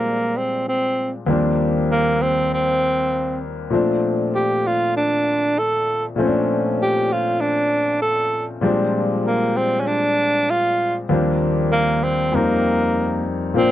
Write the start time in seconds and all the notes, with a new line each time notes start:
Already playing: A#2 F3 G3 G#3 A#3 C4 D4
0.37 C4
0.68 C4
1.26 D#2 F3 G3 A#3 C4 D4
1.91 A#3
2.22 C4
2.53 C4
3.70 A#2 F3 A3 C4
3.75 D4
4.35 G4
4.67 F4
4.97 D4
5.59 A4
6.16 A#2 F3 A3 C4
6.20 C#4
6.27 D4
6.82 G4
7.12 F4
7.40 D4
8.02 A4
8.61 A#2 F3 G3 G#3 C4 D4
9.26 A#3
9.57 C4
9.80 C#4
9.87 D4
10.50 F4
11.09 D#2 F3 G3 A#3 C4 D4
11.72 A#3
12.04 C4
12.32 F2 G3 A#3 C4 D#4
13.54 A#2 F3 A#3 C4
13.58 D4